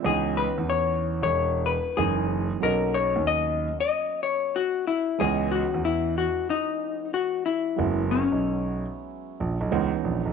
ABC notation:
X:1
M:4/4
L:1/16
Q:"Swing 16ths" 1/4=93
K:C#dor
V:1 name="Hollow-body jazz guitar"
G2 B2 c3 c3 B2 G3 z | A2 c2 d3 d3 c2 F2 E2 | G2 F2 E2 F2 D4 F2 E2- | E2 C12 z2 |]
V:2 name="Upright piano"
[E,G,B,CD]12 [E,G,A,CD]4 | [F,A,B,Cd]16 | [E,G,B,Cd]16 | [F,G,B,CE]12 [E,G,B,CD]4 |]
V:3 name="Grand piano" clef=bass
C,,3 E,,4 E,,,4 z F,,,4 | B,,,3 D,,4 z8 z | C,,3 E,,4 z8 z | F,,,3 B,,,4 z3 A,,, B,,, C,, z A,,, B,,, |]